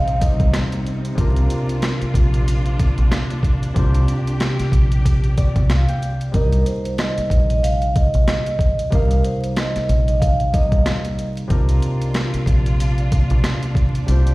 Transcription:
Already playing: fingered electric bass A#1, harp C3 G3 A#3 D#4 F5, string section C3 G3 C4 D#4, vibraphone F5
0.08 closed hi-hat
0.20 harp C3 G3 A#3 D#4 D#5, vibraphone D#5, kick, closed hi-hat
0.40 fingered electric bass C2, kick, closed hi-hat
0.54 cross-stick, snare, closed hi-hat
0.72 closed hi-hat
0.86 closed hi-hat
1.05 closed hi-hat
1.15 fingered electric bass C2, harp C3 C4 D4 F4, string section A#3 D4 F4, kick, closed hi-hat
1.20 harp A#4
1.36 closed hi-hat
1.50 closed hi-hat
1.69 closed hi-hat
1.82 cross-stick, snare, closed hi-hat
2.02 muted fingered electric bass stroke, closed hi-hat
2.14 fingered electric bass A#1, kick, closed hi-hat
2.34 closed hi-hat
2.48 closed hi-hat
2.66 closed hi-hat
2.80 kick, closed hi-hat
2.98 fingered electric bass A#1, closed hi-hat
3.12 cross-stick, snare, closed hi-hat
3.30 closed hi-hat
3.43 kick, closed hi-hat
3.63 closed hi-hat
3.74 fingered electric bass C2, harp C3 C4 D4 F4, string section G4, kick, closed hi-hat
3.78 harp C5
3.94 closed hi-hat
4.08 closed hi-hat
4.27 closed hi-hat
4.40 cross-stick, snare, closed hi-hat
4.59 muted fingered electric bass stroke, snare, closed hi-hat
4.72 fingered electric bass A#1, kick, closed hi-hat
4.92 closed hi-hat
5.06 kick, closed hi-hat
5.24 closed hi-hat
5.37 harp D5, kick, closed hi-hat
5.56 fingered electric bass C2, kick, closed hi-hat
5.69 harp F5, cross-stick, snare, closed hi-hat
5.88 harp G5, closed hi-hat
6.03 closed hi-hat
6.21 closed hi-hat
6.32 fingered electric bass C2, harp C3 G3 A#3 D#4, vibraphone A#4, kick, closed hi-hat
6.36 harp D#5
6.53 closed hi-hat
6.66 vibraphone C5, closed hi-hat
6.85 closed hi-hat
6.98 vibraphone D#5, cross-stick, snare, closed hi-hat
7.18 muted fingered electric bass stroke, closed hi-hat
7.30 fingered electric bass A#1, kick, closed hi-hat
7.50 vibraphone D#5, closed hi-hat
7.63 vibraphone F5, closed hi-hat
7.82 closed hi-hat
7.96 vibraphone D#5, kick, closed hi-hat
8.14 fingered electric bass A#1, closed hi-hat
8.28 cross-stick, snare, closed hi-hat
8.46 closed hi-hat
8.59 kick, closed hi-hat
8.79 closed hi-hat
8.90 fingered electric bass C2, harp C3 G3 A#3 D#4, vibraphone A#4, kick, closed hi-hat
8.95 harp F5
9.11 closed hi-hat
9.24 vibraphone C5, closed hi-hat
9.44 closed hi-hat
9.56 vibraphone D#5, cross-stick, snare, closed hi-hat
9.76 muted fingered electric bass stroke, snare, closed hi-hat
9.89 fingered electric bass A#1, closed hi-hat
10.07 vibraphone D#5, closed hi-hat
10.20 vibraphone F5, kick, closed hi-hat
10.40 closed hi-hat
10.52 harp C3 G3 A#3 D#4 D#5, vibraphone D#5, kick, closed hi-hat
10.72 fingered electric bass C2, kick, closed hi-hat
10.86 cross-stick, snare, closed hi-hat
11.05 closed hi-hat
11.19 closed hi-hat
11.37 closed hi-hat
11.47 fingered electric bass C2, harp C3 C4 D4 F4, string section A#3 D4 F4, kick, closed hi-hat
11.52 harp A#4
11.69 closed hi-hat
11.82 closed hi-hat
12.02 closed hi-hat
12.14 cross-stick, snare, closed hi-hat
12.34 muted fingered electric bass stroke, closed hi-hat
12.46 fingered electric bass A#1, kick, closed hi-hat
12.66 closed hi-hat
12.80 closed hi-hat
12.98 closed hi-hat
13.12 kick, closed hi-hat
13.30 fingered electric bass A#1, closed hi-hat
13.44 cross-stick, snare, closed hi-hat
13.63 closed hi-hat
13.75 kick, closed hi-hat
13.95 closed hi-hat
14.06 fingered electric bass C2, harp C3 C4 D4 F4, string section G4, closed hi-hat
14.11 harp C5
14.27 closed hi-hat

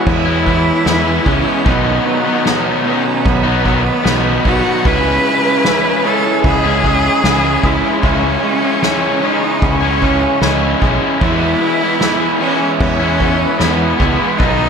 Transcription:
Already playing: overdriven electric guitar E3 G#3 B3 E4, clean electric guitar E3 G#3 E4, string section E4 B4 G#5 B5
0.06 fingered electric bass E2, clean electric guitar B3, cello E4, vibraphone C#5, kick, crash
0.27 overdriven electric guitar G#3 B3 E4
0.47 overdriven electric guitar E3 G#3 B3 E4, kick, crash
0.66 muted overdriven electric guitar stroke
0.86 fingered electric bass E2, overdriven electric guitar E3 G#3 B3 E4, snare, crash
1.26 fingered electric bass C#2, overdriven electric guitar E3 G#3 B3 E4, cello C#4, kick, crash
1.45 overdriven electric guitar G#3 B3 E4
1.64 fingered electric bass B1, overdriven electric guitar B2 D#3 F#3 B3 D#4, string section D#4 F#5 B5, vibraphone D#5, kick, crash
1.68 cello B3
1.85 overdriven electric guitar F#3 B3 D#4
2.05 overdriven electric guitar D#3 F#3 B3 D#4, crash
2.25 overdriven electric guitar F#3 B3 D#4
2.44 overdriven electric guitar B2 D#3 F#3 B3 D#4, vibraphone C#5, snare, crash
2.85 overdriven electric guitar D#3 F#3 B3 D#4, cello C#4, vibraphone D#5, crash
3.05 overdriven electric guitar F#3 B3 D#4, muted overdriven electric guitar stroke
3.25 fingered electric bass B1, clean electric guitar B3, cello B3, vibraphone C#5, kick, crash
3.46 overdriven electric guitar F#3 B3 D#4
3.65 overdriven electric guitar D#3 F#3 B3 D#4, kick, crash
3.84 muted overdriven electric guitar stroke
4.04 fingered electric bass B1, overdriven electric guitar B2 D#3 F#3 B3 D#4, vibraphone D#5, snare, crash
4.44 fingered electric bass B1, overdriven electric guitar D#3 F#3 B3 D#4, cello F#4, vibraphone B4, kick, crash
4.64 overdriven electric guitar F#3 B3 D#4
4.84 fingered electric bass C#2, overdriven electric guitar C#3 G#3 C#4 E4, string section E3 C#5 G#5, cello B4, kick, crash
5.04 overdriven electric guitar G#3 C#4 E4
5.24 overdriven electric guitar C#3 G#3 C#4 E4, crash
5.44 overdriven electric guitar G#3 C#4 E4
5.64 overdriven electric guitar C#3 G#3 C#4 E4, vibraphone B4, snare, crash
6.04 overdriven electric guitar C#3 G#3 C#4 E4, cello A4, vibraphone C#5, crash
6.24 overdriven electric guitar G#3 C#4 E4, muted overdriven electric guitar stroke
6.44 fingered electric bass C#2, clean electric guitar B3, cello G#4, vibraphone D#5, kick, crash
6.64 overdriven electric guitar G#3 C#4 E4
6.83 overdriven electric guitar C#3 G#3 C#4 E4, kick, crash
7.04 muted overdriven electric guitar stroke
7.23 fingered electric bass C#2, overdriven electric guitar C#3 G#3 C#4 E4, clean electric guitar B3, snare, crash
7.63 fingered electric bass C#2, overdriven electric guitar C#3 G#3 C#4 E4, cello E4, kick, crash
7.83 overdriven electric guitar G#3 C#4 E4
8.03 fingered electric bass C#2, overdriven electric guitar C#3 G#3 C#4 E4, cello C#4, vibraphone E5, string section C#6, kick, crash
8.23 overdriven electric guitar G#3 C#4 E4
8.43 overdriven electric guitar C#3 G#3 C#4 E4, crash
8.62 overdriven electric guitar G#3 C#4 E4
8.81 overdriven electric guitar C#3 G#3 C#4 E4, vibraphone C#5, snare, crash
9.22 overdriven electric guitar C#3 G#3 C#4 E4, cello D#4, vibraphone D#5, crash
9.41 overdriven electric guitar G#3 C#4 E4, muted overdriven electric guitar stroke
9.62 fingered electric bass C#2, clean electric guitar B3, cello C#4, vibraphone C#5, kick, crash
9.81 overdriven electric guitar G#3 C#4 E4
10.01 overdriven electric guitar C#3 G#3 C#4 E4, kick, crash
10.23 muted overdriven electric guitar stroke
10.41 fingered electric bass C#2, overdriven electric guitar C#3 G#3 C#4 E4, clean electric guitar B3, vibraphone D#5, snare, crash
10.81 fingered electric bass B1, overdriven electric guitar C#3 G#3 C#4 E4, vibraphone C#5, kick, crash
11.01 overdriven electric guitar G#3 C#4 E4
11.20 fingered electric bass E2, overdriven electric guitar E3 G#3 B3 E4, string section E4 B4 G#5 B5, cello E4, kick, crash
11.41 overdriven electric guitar G#3 B3 E4
11.60 overdriven electric guitar E3 G#3 B3 E4, crash
11.81 overdriven electric guitar G#3 B3 E4
12.00 overdriven electric guitar E3 G#3 B3 E4, vibraphone B4, snare, crash
12.40 overdriven electric guitar E3 G#3 B3 E4, cello C#4, vibraphone C#5, crash
12.60 overdriven electric guitar G#3 B3 E4, muted overdriven electric guitar stroke
12.80 fingered electric bass E2, clean electric guitar B3, cello C#4, vibraphone C#5, kick, crash
13.00 overdriven electric guitar G#3 B3 E4
13.20 overdriven electric guitar E3 G#3 B3 E4, kick, crash
13.39 muted overdriven electric guitar stroke
13.59 fingered electric bass E2, overdriven electric guitar E3 G#3 B3 E4, cello B3, snare, crash
13.99 fingered electric bass C#2, overdriven electric guitar E3 G#3 B3 E4, kick, crash
14.19 overdriven electric guitar G#3 B3 E4
14.37 fingered electric bass B1, overdriven electric guitar B2 D#3 F#3 B3 D#4, cello D#4, string section D#4 F#5, vibraphone D#5, kick, crash
14.59 overdriven electric guitar F#3 B3 D#4

